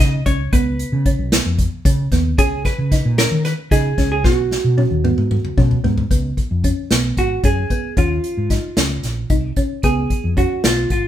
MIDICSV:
0, 0, Header, 1, 5, 480
1, 0, Start_track
1, 0, Tempo, 532387
1, 475, Time_signature, 7, 3, 24, 8
1, 9987, End_track
2, 0, Start_track
2, 0, Title_t, "Hollow-body jazz guitar"
2, 0, Program_c, 0, 26
2, 0, Note_on_c, 0, 75, 90
2, 230, Note_off_c, 0, 75, 0
2, 234, Note_on_c, 0, 73, 92
2, 475, Note_on_c, 0, 71, 92
2, 481, Note_off_c, 0, 73, 0
2, 1397, Note_off_c, 0, 71, 0
2, 2151, Note_on_c, 0, 68, 97
2, 2389, Note_off_c, 0, 68, 0
2, 2393, Note_on_c, 0, 71, 99
2, 2868, Note_off_c, 0, 71, 0
2, 2871, Note_on_c, 0, 70, 106
2, 3106, Note_off_c, 0, 70, 0
2, 3110, Note_on_c, 0, 71, 97
2, 3174, Note_off_c, 0, 71, 0
2, 3350, Note_on_c, 0, 68, 91
2, 3701, Note_off_c, 0, 68, 0
2, 3712, Note_on_c, 0, 68, 81
2, 3827, Note_on_c, 0, 66, 75
2, 3833, Note_off_c, 0, 68, 0
2, 5230, Note_off_c, 0, 66, 0
2, 6478, Note_on_c, 0, 66, 74
2, 6713, Note_off_c, 0, 66, 0
2, 6716, Note_on_c, 0, 68, 88
2, 7192, Note_off_c, 0, 68, 0
2, 7196, Note_on_c, 0, 65, 75
2, 8597, Note_off_c, 0, 65, 0
2, 8872, Note_on_c, 0, 68, 70
2, 9318, Note_off_c, 0, 68, 0
2, 9356, Note_on_c, 0, 66, 73
2, 9577, Note_off_c, 0, 66, 0
2, 9602, Note_on_c, 0, 65, 76
2, 9830, Note_off_c, 0, 65, 0
2, 9841, Note_on_c, 0, 65, 67
2, 9987, Note_off_c, 0, 65, 0
2, 9987, End_track
3, 0, Start_track
3, 0, Title_t, "Synth arpeggio sound"
3, 0, Program_c, 1, 84
3, 0, Note_on_c, 1, 63, 89
3, 194, Note_off_c, 1, 63, 0
3, 235, Note_on_c, 1, 61, 84
3, 432, Note_off_c, 1, 61, 0
3, 475, Note_on_c, 1, 59, 93
3, 868, Note_off_c, 1, 59, 0
3, 955, Note_on_c, 1, 61, 78
3, 1151, Note_off_c, 1, 61, 0
3, 1194, Note_on_c, 1, 59, 85
3, 1587, Note_off_c, 1, 59, 0
3, 1673, Note_on_c, 1, 61, 86
3, 1869, Note_off_c, 1, 61, 0
3, 1915, Note_on_c, 1, 59, 81
3, 2110, Note_off_c, 1, 59, 0
3, 2150, Note_on_c, 1, 61, 98
3, 2543, Note_off_c, 1, 61, 0
3, 2632, Note_on_c, 1, 63, 78
3, 2828, Note_off_c, 1, 63, 0
3, 2869, Note_on_c, 1, 61, 84
3, 3262, Note_off_c, 1, 61, 0
3, 3351, Note_on_c, 1, 63, 95
3, 3546, Note_off_c, 1, 63, 0
3, 3590, Note_on_c, 1, 61, 89
3, 3786, Note_off_c, 1, 61, 0
3, 3828, Note_on_c, 1, 59, 94
3, 4221, Note_off_c, 1, 59, 0
3, 4305, Note_on_c, 1, 61, 78
3, 4503, Note_off_c, 1, 61, 0
3, 4547, Note_on_c, 1, 59, 86
3, 4940, Note_off_c, 1, 59, 0
3, 5028, Note_on_c, 1, 61, 90
3, 5224, Note_off_c, 1, 61, 0
3, 5265, Note_on_c, 1, 59, 80
3, 5462, Note_off_c, 1, 59, 0
3, 5506, Note_on_c, 1, 59, 86
3, 5900, Note_off_c, 1, 59, 0
3, 5989, Note_on_c, 1, 61, 78
3, 6185, Note_off_c, 1, 61, 0
3, 6231, Note_on_c, 1, 59, 82
3, 6623, Note_off_c, 1, 59, 0
3, 6705, Note_on_c, 1, 61, 78
3, 6903, Note_off_c, 1, 61, 0
3, 6952, Note_on_c, 1, 59, 78
3, 7147, Note_off_c, 1, 59, 0
3, 7187, Note_on_c, 1, 61, 83
3, 7581, Note_off_c, 1, 61, 0
3, 7669, Note_on_c, 1, 63, 74
3, 7865, Note_off_c, 1, 63, 0
3, 7908, Note_on_c, 1, 61, 79
3, 8302, Note_off_c, 1, 61, 0
3, 8386, Note_on_c, 1, 63, 90
3, 8585, Note_off_c, 1, 63, 0
3, 8627, Note_on_c, 1, 61, 80
3, 8825, Note_off_c, 1, 61, 0
3, 8872, Note_on_c, 1, 59, 91
3, 9266, Note_off_c, 1, 59, 0
3, 9348, Note_on_c, 1, 61, 76
3, 9547, Note_off_c, 1, 61, 0
3, 9592, Note_on_c, 1, 59, 83
3, 9987, Note_off_c, 1, 59, 0
3, 9987, End_track
4, 0, Start_track
4, 0, Title_t, "Fretless electric bass"
4, 0, Program_c, 2, 35
4, 0, Note_on_c, 2, 49, 91
4, 176, Note_off_c, 2, 49, 0
4, 234, Note_on_c, 2, 37, 79
4, 415, Note_off_c, 2, 37, 0
4, 473, Note_on_c, 2, 37, 86
4, 744, Note_off_c, 2, 37, 0
4, 832, Note_on_c, 2, 49, 86
4, 1013, Note_off_c, 2, 49, 0
4, 1069, Note_on_c, 2, 35, 77
4, 1251, Note_off_c, 2, 35, 0
4, 1311, Note_on_c, 2, 41, 75
4, 1492, Note_off_c, 2, 41, 0
4, 1669, Note_on_c, 2, 49, 93
4, 1850, Note_off_c, 2, 49, 0
4, 1907, Note_on_c, 2, 39, 86
4, 2150, Note_off_c, 2, 39, 0
4, 2150, Note_on_c, 2, 37, 101
4, 2420, Note_off_c, 2, 37, 0
4, 2511, Note_on_c, 2, 49, 87
4, 2690, Note_off_c, 2, 49, 0
4, 2752, Note_on_c, 2, 46, 94
4, 2931, Note_off_c, 2, 46, 0
4, 2987, Note_on_c, 2, 51, 84
4, 3168, Note_off_c, 2, 51, 0
4, 3347, Note_on_c, 2, 49, 92
4, 3527, Note_off_c, 2, 49, 0
4, 3586, Note_on_c, 2, 37, 86
4, 3826, Note_off_c, 2, 37, 0
4, 3826, Note_on_c, 2, 35, 94
4, 4097, Note_off_c, 2, 35, 0
4, 4186, Note_on_c, 2, 47, 85
4, 4366, Note_off_c, 2, 47, 0
4, 4426, Note_on_c, 2, 39, 78
4, 4606, Note_off_c, 2, 39, 0
4, 4668, Note_on_c, 2, 44, 72
4, 4847, Note_off_c, 2, 44, 0
4, 5026, Note_on_c, 2, 47, 95
4, 5206, Note_off_c, 2, 47, 0
4, 5269, Note_on_c, 2, 44, 87
4, 5448, Note_off_c, 2, 44, 0
4, 5505, Note_on_c, 2, 37, 87
4, 5686, Note_off_c, 2, 37, 0
4, 5868, Note_on_c, 2, 41, 73
4, 6048, Note_off_c, 2, 41, 0
4, 6228, Note_on_c, 2, 35, 82
4, 6407, Note_off_c, 2, 35, 0
4, 6464, Note_on_c, 2, 32, 79
4, 6645, Note_off_c, 2, 32, 0
4, 6704, Note_on_c, 2, 42, 74
4, 6885, Note_off_c, 2, 42, 0
4, 7184, Note_on_c, 2, 39, 88
4, 7365, Note_off_c, 2, 39, 0
4, 7550, Note_on_c, 2, 44, 72
4, 7729, Note_off_c, 2, 44, 0
4, 7906, Note_on_c, 2, 37, 77
4, 8087, Note_off_c, 2, 37, 0
4, 8146, Note_on_c, 2, 34, 78
4, 8327, Note_off_c, 2, 34, 0
4, 8385, Note_on_c, 2, 36, 77
4, 8567, Note_off_c, 2, 36, 0
4, 8868, Note_on_c, 2, 37, 83
4, 9049, Note_off_c, 2, 37, 0
4, 9232, Note_on_c, 2, 41, 73
4, 9412, Note_off_c, 2, 41, 0
4, 9594, Note_on_c, 2, 35, 79
4, 9774, Note_off_c, 2, 35, 0
4, 9829, Note_on_c, 2, 32, 82
4, 9987, Note_off_c, 2, 32, 0
4, 9987, End_track
5, 0, Start_track
5, 0, Title_t, "Drums"
5, 0, Note_on_c, 9, 36, 107
5, 86, Note_off_c, 9, 36, 0
5, 234, Note_on_c, 9, 42, 65
5, 235, Note_on_c, 9, 36, 75
5, 324, Note_off_c, 9, 42, 0
5, 325, Note_off_c, 9, 36, 0
5, 474, Note_on_c, 9, 42, 70
5, 475, Note_on_c, 9, 36, 96
5, 564, Note_off_c, 9, 42, 0
5, 565, Note_off_c, 9, 36, 0
5, 715, Note_on_c, 9, 42, 61
5, 805, Note_off_c, 9, 42, 0
5, 952, Note_on_c, 9, 36, 78
5, 953, Note_on_c, 9, 42, 72
5, 1043, Note_off_c, 9, 36, 0
5, 1043, Note_off_c, 9, 42, 0
5, 1191, Note_on_c, 9, 38, 123
5, 1191, Note_on_c, 9, 42, 93
5, 1281, Note_off_c, 9, 38, 0
5, 1281, Note_off_c, 9, 42, 0
5, 1430, Note_on_c, 9, 36, 73
5, 1430, Note_on_c, 9, 42, 64
5, 1520, Note_off_c, 9, 36, 0
5, 1520, Note_off_c, 9, 42, 0
5, 1670, Note_on_c, 9, 36, 107
5, 1672, Note_on_c, 9, 42, 79
5, 1760, Note_off_c, 9, 36, 0
5, 1762, Note_off_c, 9, 42, 0
5, 1908, Note_on_c, 9, 38, 35
5, 1908, Note_on_c, 9, 42, 51
5, 1909, Note_on_c, 9, 36, 75
5, 1999, Note_off_c, 9, 36, 0
5, 1999, Note_off_c, 9, 38, 0
5, 1999, Note_off_c, 9, 42, 0
5, 2148, Note_on_c, 9, 36, 103
5, 2149, Note_on_c, 9, 42, 70
5, 2238, Note_off_c, 9, 36, 0
5, 2239, Note_off_c, 9, 42, 0
5, 2388, Note_on_c, 9, 36, 69
5, 2390, Note_on_c, 9, 38, 36
5, 2390, Note_on_c, 9, 42, 54
5, 2478, Note_off_c, 9, 36, 0
5, 2480, Note_off_c, 9, 38, 0
5, 2480, Note_off_c, 9, 42, 0
5, 2628, Note_on_c, 9, 36, 84
5, 2629, Note_on_c, 9, 38, 36
5, 2629, Note_on_c, 9, 42, 65
5, 2718, Note_off_c, 9, 36, 0
5, 2719, Note_off_c, 9, 38, 0
5, 2719, Note_off_c, 9, 42, 0
5, 2868, Note_on_c, 9, 38, 115
5, 2868, Note_on_c, 9, 42, 86
5, 2958, Note_off_c, 9, 38, 0
5, 2958, Note_off_c, 9, 42, 0
5, 3108, Note_on_c, 9, 38, 35
5, 3108, Note_on_c, 9, 42, 63
5, 3199, Note_off_c, 9, 38, 0
5, 3199, Note_off_c, 9, 42, 0
5, 3347, Note_on_c, 9, 36, 96
5, 3350, Note_on_c, 9, 38, 31
5, 3350, Note_on_c, 9, 42, 77
5, 3438, Note_off_c, 9, 36, 0
5, 3441, Note_off_c, 9, 38, 0
5, 3441, Note_off_c, 9, 42, 0
5, 3587, Note_on_c, 9, 36, 74
5, 3587, Note_on_c, 9, 38, 32
5, 3587, Note_on_c, 9, 42, 54
5, 3677, Note_off_c, 9, 36, 0
5, 3677, Note_off_c, 9, 38, 0
5, 3677, Note_off_c, 9, 42, 0
5, 3826, Note_on_c, 9, 36, 102
5, 3826, Note_on_c, 9, 38, 57
5, 3916, Note_off_c, 9, 36, 0
5, 3916, Note_off_c, 9, 38, 0
5, 4069, Note_on_c, 9, 38, 65
5, 4159, Note_off_c, 9, 38, 0
5, 4309, Note_on_c, 9, 48, 73
5, 4399, Note_off_c, 9, 48, 0
5, 4550, Note_on_c, 9, 47, 88
5, 4640, Note_off_c, 9, 47, 0
5, 4668, Note_on_c, 9, 47, 64
5, 4759, Note_off_c, 9, 47, 0
5, 4787, Note_on_c, 9, 47, 91
5, 4878, Note_off_c, 9, 47, 0
5, 4910, Note_on_c, 9, 45, 68
5, 5001, Note_off_c, 9, 45, 0
5, 5027, Note_on_c, 9, 36, 98
5, 5028, Note_on_c, 9, 45, 82
5, 5117, Note_off_c, 9, 36, 0
5, 5119, Note_off_c, 9, 45, 0
5, 5149, Note_on_c, 9, 43, 72
5, 5239, Note_off_c, 9, 43, 0
5, 5269, Note_on_c, 9, 43, 86
5, 5359, Note_off_c, 9, 43, 0
5, 5387, Note_on_c, 9, 43, 93
5, 5478, Note_off_c, 9, 43, 0
5, 5506, Note_on_c, 9, 36, 87
5, 5508, Note_on_c, 9, 42, 64
5, 5596, Note_off_c, 9, 36, 0
5, 5598, Note_off_c, 9, 42, 0
5, 5746, Note_on_c, 9, 36, 66
5, 5748, Note_on_c, 9, 42, 53
5, 5836, Note_off_c, 9, 36, 0
5, 5838, Note_off_c, 9, 42, 0
5, 5986, Note_on_c, 9, 36, 68
5, 5987, Note_on_c, 9, 42, 59
5, 6076, Note_off_c, 9, 36, 0
5, 6077, Note_off_c, 9, 42, 0
5, 6226, Note_on_c, 9, 38, 104
5, 6226, Note_on_c, 9, 42, 79
5, 6317, Note_off_c, 9, 38, 0
5, 6317, Note_off_c, 9, 42, 0
5, 6466, Note_on_c, 9, 36, 63
5, 6467, Note_on_c, 9, 42, 54
5, 6556, Note_off_c, 9, 36, 0
5, 6557, Note_off_c, 9, 42, 0
5, 6704, Note_on_c, 9, 42, 74
5, 6705, Note_on_c, 9, 36, 93
5, 6794, Note_off_c, 9, 42, 0
5, 6795, Note_off_c, 9, 36, 0
5, 6945, Note_on_c, 9, 36, 65
5, 6945, Note_on_c, 9, 42, 51
5, 7035, Note_off_c, 9, 36, 0
5, 7035, Note_off_c, 9, 42, 0
5, 7185, Note_on_c, 9, 36, 98
5, 7185, Note_on_c, 9, 42, 64
5, 7275, Note_off_c, 9, 36, 0
5, 7275, Note_off_c, 9, 42, 0
5, 7427, Note_on_c, 9, 42, 55
5, 7517, Note_off_c, 9, 42, 0
5, 7665, Note_on_c, 9, 36, 73
5, 7665, Note_on_c, 9, 38, 33
5, 7665, Note_on_c, 9, 42, 63
5, 7755, Note_off_c, 9, 36, 0
5, 7755, Note_off_c, 9, 38, 0
5, 7755, Note_off_c, 9, 42, 0
5, 7905, Note_on_c, 9, 38, 111
5, 7905, Note_on_c, 9, 42, 86
5, 7995, Note_off_c, 9, 38, 0
5, 7995, Note_off_c, 9, 42, 0
5, 8144, Note_on_c, 9, 38, 32
5, 8144, Note_on_c, 9, 42, 60
5, 8234, Note_off_c, 9, 38, 0
5, 8234, Note_off_c, 9, 42, 0
5, 8384, Note_on_c, 9, 42, 76
5, 8385, Note_on_c, 9, 36, 94
5, 8474, Note_off_c, 9, 42, 0
5, 8475, Note_off_c, 9, 36, 0
5, 8623, Note_on_c, 9, 42, 54
5, 8625, Note_on_c, 9, 36, 73
5, 8713, Note_off_c, 9, 42, 0
5, 8715, Note_off_c, 9, 36, 0
5, 8864, Note_on_c, 9, 42, 70
5, 8867, Note_on_c, 9, 36, 83
5, 8954, Note_off_c, 9, 42, 0
5, 8957, Note_off_c, 9, 36, 0
5, 9108, Note_on_c, 9, 36, 64
5, 9110, Note_on_c, 9, 42, 59
5, 9198, Note_off_c, 9, 36, 0
5, 9200, Note_off_c, 9, 42, 0
5, 9348, Note_on_c, 9, 36, 75
5, 9350, Note_on_c, 9, 42, 63
5, 9439, Note_off_c, 9, 36, 0
5, 9441, Note_off_c, 9, 42, 0
5, 9591, Note_on_c, 9, 38, 113
5, 9591, Note_on_c, 9, 42, 76
5, 9681, Note_off_c, 9, 38, 0
5, 9681, Note_off_c, 9, 42, 0
5, 9830, Note_on_c, 9, 36, 62
5, 9830, Note_on_c, 9, 42, 57
5, 9920, Note_off_c, 9, 36, 0
5, 9920, Note_off_c, 9, 42, 0
5, 9987, End_track
0, 0, End_of_file